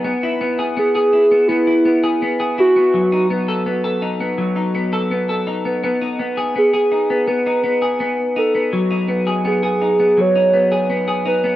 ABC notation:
X:1
M:4/4
L:1/16
Q:1/4=83
K:Bmix
V:1 name="Soft synth lead"
z4 G G3 E4 z2 F2- | F2 z12 z2 | z4 G G3 B4 z2 A2 | z4 G G3 c4 z2 B2 |]
V:2 name="Clean electric guitar"
B, E B, G B, G E B, B, E B, G B, G E B, | F, D B, A B, A D B, F, D B, A B, A D B, | B, D B, G B, G D B, B, D B, G B,2 D B, | F, D B, G B, G D B, F, D B, G B, G D B, |]